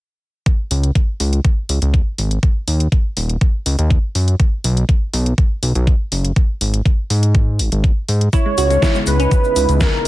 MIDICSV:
0, 0, Header, 1, 6, 480
1, 0, Start_track
1, 0, Tempo, 491803
1, 452, Time_signature, 4, 2, 24, 8
1, 9837, End_track
2, 0, Start_track
2, 0, Title_t, "Soft synth lead"
2, 0, Program_c, 0, 80
2, 8131, Note_on_c, 0, 73, 101
2, 8758, Note_off_c, 0, 73, 0
2, 8852, Note_on_c, 0, 71, 100
2, 9571, Note_on_c, 0, 70, 112
2, 9585, Note_off_c, 0, 71, 0
2, 9837, Note_off_c, 0, 70, 0
2, 9837, End_track
3, 0, Start_track
3, 0, Title_t, "Analog synth pad"
3, 0, Program_c, 1, 89
3, 8130, Note_on_c, 1, 49, 81
3, 8130, Note_on_c, 1, 56, 75
3, 8130, Note_on_c, 1, 59, 73
3, 8130, Note_on_c, 1, 63, 72
3, 8131, Note_on_c, 1, 64, 87
3, 9837, Note_off_c, 1, 49, 0
3, 9837, Note_off_c, 1, 56, 0
3, 9837, Note_off_c, 1, 59, 0
3, 9837, Note_off_c, 1, 63, 0
3, 9837, Note_off_c, 1, 64, 0
3, 9837, End_track
4, 0, Start_track
4, 0, Title_t, "Synth arpeggio sound"
4, 0, Program_c, 2, 84
4, 8131, Note_on_c, 2, 64, 97
4, 8199, Note_off_c, 2, 64, 0
4, 8255, Note_on_c, 2, 56, 66
4, 8318, Note_off_c, 2, 56, 0
4, 8371, Note_on_c, 2, 66, 87
4, 8439, Note_off_c, 2, 66, 0
4, 8495, Note_on_c, 2, 56, 65
4, 8559, Note_off_c, 2, 56, 0
4, 8611, Note_on_c, 2, 64, 92
4, 8679, Note_off_c, 2, 64, 0
4, 8735, Note_on_c, 2, 56, 63
4, 8798, Note_off_c, 2, 56, 0
4, 8852, Note_on_c, 2, 56, 65
4, 8919, Note_off_c, 2, 56, 0
4, 8975, Note_on_c, 2, 61, 96
4, 9837, Note_off_c, 2, 61, 0
4, 9837, End_track
5, 0, Start_track
5, 0, Title_t, "Analog synth bass"
5, 0, Program_c, 3, 38
5, 692, Note_on_c, 3, 37, 96
5, 889, Note_off_c, 3, 37, 0
5, 1172, Note_on_c, 3, 37, 93
5, 1369, Note_off_c, 3, 37, 0
5, 1651, Note_on_c, 3, 37, 88
5, 1752, Note_off_c, 3, 37, 0
5, 1775, Note_on_c, 3, 37, 91
5, 1970, Note_off_c, 3, 37, 0
5, 2131, Note_on_c, 3, 32, 88
5, 2329, Note_off_c, 3, 32, 0
5, 2611, Note_on_c, 3, 39, 79
5, 2808, Note_off_c, 3, 39, 0
5, 3092, Note_on_c, 3, 27, 84
5, 3289, Note_off_c, 3, 27, 0
5, 3572, Note_on_c, 3, 37, 84
5, 3673, Note_off_c, 3, 37, 0
5, 3695, Note_on_c, 3, 39, 84
5, 3890, Note_off_c, 3, 39, 0
5, 4052, Note_on_c, 3, 42, 82
5, 4249, Note_off_c, 3, 42, 0
5, 4532, Note_on_c, 3, 35, 97
5, 4729, Note_off_c, 3, 35, 0
5, 5011, Note_on_c, 3, 35, 90
5, 5209, Note_off_c, 3, 35, 0
5, 5491, Note_on_c, 3, 35, 86
5, 5592, Note_off_c, 3, 35, 0
5, 5614, Note_on_c, 3, 35, 89
5, 5809, Note_off_c, 3, 35, 0
5, 5971, Note_on_c, 3, 30, 84
5, 6168, Note_off_c, 3, 30, 0
5, 6451, Note_on_c, 3, 32, 79
5, 6649, Note_off_c, 3, 32, 0
5, 6931, Note_on_c, 3, 44, 86
5, 7411, Note_on_c, 3, 32, 92
5, 7426, Note_off_c, 3, 44, 0
5, 7512, Note_off_c, 3, 32, 0
5, 7535, Note_on_c, 3, 32, 77
5, 7730, Note_off_c, 3, 32, 0
5, 7892, Note_on_c, 3, 44, 85
5, 8089, Note_off_c, 3, 44, 0
5, 8371, Note_on_c, 3, 37, 97
5, 8568, Note_off_c, 3, 37, 0
5, 8851, Note_on_c, 3, 37, 92
5, 9049, Note_off_c, 3, 37, 0
5, 9331, Note_on_c, 3, 37, 89
5, 9432, Note_off_c, 3, 37, 0
5, 9455, Note_on_c, 3, 37, 94
5, 9650, Note_off_c, 3, 37, 0
5, 9837, End_track
6, 0, Start_track
6, 0, Title_t, "Drums"
6, 451, Note_on_c, 9, 36, 115
6, 452, Note_on_c, 9, 42, 51
6, 549, Note_off_c, 9, 36, 0
6, 550, Note_off_c, 9, 42, 0
6, 691, Note_on_c, 9, 46, 96
6, 789, Note_off_c, 9, 46, 0
6, 815, Note_on_c, 9, 42, 65
6, 913, Note_off_c, 9, 42, 0
6, 931, Note_on_c, 9, 36, 99
6, 931, Note_on_c, 9, 42, 53
6, 1029, Note_off_c, 9, 36, 0
6, 1029, Note_off_c, 9, 42, 0
6, 1171, Note_on_c, 9, 46, 91
6, 1269, Note_off_c, 9, 46, 0
6, 1295, Note_on_c, 9, 42, 63
6, 1393, Note_off_c, 9, 42, 0
6, 1411, Note_on_c, 9, 36, 115
6, 1412, Note_on_c, 9, 42, 52
6, 1509, Note_off_c, 9, 36, 0
6, 1510, Note_off_c, 9, 42, 0
6, 1652, Note_on_c, 9, 46, 104
6, 1749, Note_off_c, 9, 46, 0
6, 1776, Note_on_c, 9, 42, 64
6, 1873, Note_off_c, 9, 42, 0
6, 1891, Note_on_c, 9, 36, 101
6, 1892, Note_on_c, 9, 42, 51
6, 1989, Note_off_c, 9, 36, 0
6, 1990, Note_off_c, 9, 42, 0
6, 2132, Note_on_c, 9, 46, 87
6, 2229, Note_off_c, 9, 46, 0
6, 2255, Note_on_c, 9, 42, 65
6, 2353, Note_off_c, 9, 42, 0
6, 2371, Note_on_c, 9, 36, 122
6, 2371, Note_on_c, 9, 42, 52
6, 2468, Note_off_c, 9, 36, 0
6, 2469, Note_off_c, 9, 42, 0
6, 2611, Note_on_c, 9, 46, 103
6, 2709, Note_off_c, 9, 46, 0
6, 2735, Note_on_c, 9, 42, 66
6, 2833, Note_off_c, 9, 42, 0
6, 2851, Note_on_c, 9, 36, 108
6, 2851, Note_on_c, 9, 42, 51
6, 2948, Note_off_c, 9, 36, 0
6, 2949, Note_off_c, 9, 42, 0
6, 3091, Note_on_c, 9, 46, 97
6, 3189, Note_off_c, 9, 46, 0
6, 3215, Note_on_c, 9, 42, 62
6, 3313, Note_off_c, 9, 42, 0
6, 3331, Note_on_c, 9, 36, 124
6, 3332, Note_on_c, 9, 42, 51
6, 3429, Note_off_c, 9, 36, 0
6, 3430, Note_off_c, 9, 42, 0
6, 3572, Note_on_c, 9, 46, 104
6, 3669, Note_off_c, 9, 46, 0
6, 3696, Note_on_c, 9, 42, 66
6, 3794, Note_off_c, 9, 42, 0
6, 3811, Note_on_c, 9, 36, 106
6, 3812, Note_on_c, 9, 42, 50
6, 3909, Note_off_c, 9, 36, 0
6, 3910, Note_off_c, 9, 42, 0
6, 4052, Note_on_c, 9, 46, 92
6, 4149, Note_off_c, 9, 46, 0
6, 4176, Note_on_c, 9, 42, 63
6, 4273, Note_off_c, 9, 42, 0
6, 4291, Note_on_c, 9, 36, 118
6, 4292, Note_on_c, 9, 42, 49
6, 4388, Note_off_c, 9, 36, 0
6, 4390, Note_off_c, 9, 42, 0
6, 4532, Note_on_c, 9, 46, 105
6, 4629, Note_off_c, 9, 46, 0
6, 4655, Note_on_c, 9, 42, 60
6, 4753, Note_off_c, 9, 42, 0
6, 4771, Note_on_c, 9, 36, 108
6, 4772, Note_on_c, 9, 42, 50
6, 4868, Note_off_c, 9, 36, 0
6, 4869, Note_off_c, 9, 42, 0
6, 5012, Note_on_c, 9, 46, 96
6, 5109, Note_off_c, 9, 46, 0
6, 5135, Note_on_c, 9, 42, 62
6, 5233, Note_off_c, 9, 42, 0
6, 5251, Note_on_c, 9, 36, 126
6, 5252, Note_on_c, 9, 42, 51
6, 5348, Note_off_c, 9, 36, 0
6, 5350, Note_off_c, 9, 42, 0
6, 5492, Note_on_c, 9, 46, 110
6, 5589, Note_off_c, 9, 46, 0
6, 5615, Note_on_c, 9, 42, 60
6, 5713, Note_off_c, 9, 42, 0
6, 5731, Note_on_c, 9, 36, 109
6, 5732, Note_on_c, 9, 42, 49
6, 5828, Note_off_c, 9, 36, 0
6, 5829, Note_off_c, 9, 42, 0
6, 5971, Note_on_c, 9, 46, 92
6, 6069, Note_off_c, 9, 46, 0
6, 6096, Note_on_c, 9, 42, 60
6, 6193, Note_off_c, 9, 42, 0
6, 6210, Note_on_c, 9, 36, 114
6, 6212, Note_on_c, 9, 42, 48
6, 6308, Note_off_c, 9, 36, 0
6, 6309, Note_off_c, 9, 42, 0
6, 6452, Note_on_c, 9, 46, 105
6, 6549, Note_off_c, 9, 46, 0
6, 6576, Note_on_c, 9, 42, 60
6, 6673, Note_off_c, 9, 42, 0
6, 6691, Note_on_c, 9, 36, 106
6, 6692, Note_on_c, 9, 42, 49
6, 6788, Note_off_c, 9, 36, 0
6, 6790, Note_off_c, 9, 42, 0
6, 6932, Note_on_c, 9, 46, 98
6, 7030, Note_off_c, 9, 46, 0
6, 7056, Note_on_c, 9, 42, 59
6, 7153, Note_off_c, 9, 42, 0
6, 7170, Note_on_c, 9, 36, 124
6, 7172, Note_on_c, 9, 42, 48
6, 7268, Note_off_c, 9, 36, 0
6, 7270, Note_off_c, 9, 42, 0
6, 7411, Note_on_c, 9, 46, 105
6, 7509, Note_off_c, 9, 46, 0
6, 7535, Note_on_c, 9, 42, 60
6, 7633, Note_off_c, 9, 42, 0
6, 7650, Note_on_c, 9, 36, 106
6, 7652, Note_on_c, 9, 42, 48
6, 7748, Note_off_c, 9, 36, 0
6, 7749, Note_off_c, 9, 42, 0
6, 7891, Note_on_c, 9, 46, 91
6, 7989, Note_off_c, 9, 46, 0
6, 8015, Note_on_c, 9, 42, 59
6, 8113, Note_off_c, 9, 42, 0
6, 8131, Note_on_c, 9, 36, 112
6, 8131, Note_on_c, 9, 82, 52
6, 8132, Note_on_c, 9, 42, 49
6, 8228, Note_off_c, 9, 36, 0
6, 8229, Note_off_c, 9, 42, 0
6, 8229, Note_off_c, 9, 82, 0
6, 8372, Note_on_c, 9, 46, 103
6, 8373, Note_on_c, 9, 82, 94
6, 8470, Note_off_c, 9, 46, 0
6, 8471, Note_off_c, 9, 82, 0
6, 8496, Note_on_c, 9, 42, 59
6, 8498, Note_on_c, 9, 82, 39
6, 8594, Note_off_c, 9, 42, 0
6, 8596, Note_off_c, 9, 82, 0
6, 8611, Note_on_c, 9, 36, 102
6, 8612, Note_on_c, 9, 42, 47
6, 8614, Note_on_c, 9, 38, 107
6, 8617, Note_on_c, 9, 82, 49
6, 8708, Note_off_c, 9, 36, 0
6, 8710, Note_off_c, 9, 42, 0
6, 8711, Note_off_c, 9, 38, 0
6, 8714, Note_off_c, 9, 82, 0
6, 8731, Note_on_c, 9, 82, 37
6, 8828, Note_off_c, 9, 82, 0
6, 8847, Note_on_c, 9, 82, 92
6, 8852, Note_on_c, 9, 46, 97
6, 8944, Note_off_c, 9, 82, 0
6, 8949, Note_off_c, 9, 46, 0
6, 8976, Note_on_c, 9, 42, 61
6, 8981, Note_on_c, 9, 82, 35
6, 9073, Note_off_c, 9, 42, 0
6, 9078, Note_off_c, 9, 82, 0
6, 9090, Note_on_c, 9, 82, 49
6, 9091, Note_on_c, 9, 36, 117
6, 9092, Note_on_c, 9, 42, 50
6, 9188, Note_off_c, 9, 36, 0
6, 9188, Note_off_c, 9, 82, 0
6, 9189, Note_off_c, 9, 42, 0
6, 9215, Note_on_c, 9, 82, 33
6, 9312, Note_off_c, 9, 82, 0
6, 9331, Note_on_c, 9, 46, 107
6, 9333, Note_on_c, 9, 82, 97
6, 9429, Note_off_c, 9, 46, 0
6, 9430, Note_off_c, 9, 82, 0
6, 9455, Note_on_c, 9, 42, 62
6, 9465, Note_on_c, 9, 82, 43
6, 9553, Note_off_c, 9, 42, 0
6, 9562, Note_off_c, 9, 82, 0
6, 9567, Note_on_c, 9, 82, 47
6, 9571, Note_on_c, 9, 36, 103
6, 9571, Note_on_c, 9, 42, 49
6, 9573, Note_on_c, 9, 38, 106
6, 9665, Note_off_c, 9, 82, 0
6, 9668, Note_off_c, 9, 36, 0
6, 9669, Note_off_c, 9, 42, 0
6, 9670, Note_off_c, 9, 38, 0
6, 9837, End_track
0, 0, End_of_file